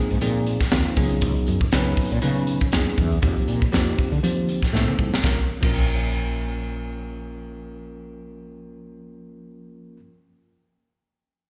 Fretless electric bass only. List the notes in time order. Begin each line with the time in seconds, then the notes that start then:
0.11 G#2
0.22 A#2
0.72 D#2
0.86 muted fretless electric bass stroke
0.97 C#2
1.22 C#2
1.48 F#2
1.72 C#2
2.12 A#2
2.22 C#3
2.73 F2
2.86 muted fretless electric bass stroke
2.98 E2
3.23 F2
3.48 A#2
3.73 F2
4.12 D3
4.23 F3
4.62 muted fretless electric bass stroke
4.73 A2
4.87 muted fretless electric bass stroke
4.99 C2
5.24 A#1
5.63 A#1